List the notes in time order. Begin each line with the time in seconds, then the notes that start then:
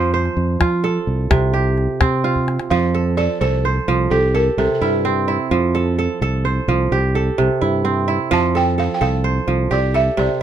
Already playing: F2 F3 C4 F4 G4 C5
0.02 calabash click
0.14 C5
0.25 calabash click
0.37 F2
0.60 F3 F4, calabash thump, calabash click
0.84 A4
1.07 C2
1.30 C2 C3, calabash thump, calabash click
1.53 G4, calabash click
1.78 calabash click
2.00 C3 C4, calabash thump, calabash click
2.24 F4
2.35 calabash thump
2.48 calabash click
2.60 calabash click
2.70 F2 F3 F5
2.94 A4
3.17 A4 D5
3.41 C2 A4 C5
3.65 C5
3.88 C2 F3
4.10 C2 G4 A4
4.35 A4 A#4
4.57 C2 C3 A4
4.75 A4
4.81 G2 E4 G4
5.05 C4
5.28 E4
5.51 F2 F3
5.75 A4
5.99 A4
6.21 C2 A4
6.45 C5
6.68 C2 F3
6.92 C2 G4
7.15 A4
7.38 C2 C3
7.61 G2 E4
7.85 C4
8.08 E4
8.31 F2 F3 A5
8.55 A4 G5
8.78 A4 F5
8.94 G5
9.01 C2 A4 F5
9.24 C5
9.48 C2 F3
9.71 C2 G4 D5
9.94 A4 E5
10.17 C2 C3 D5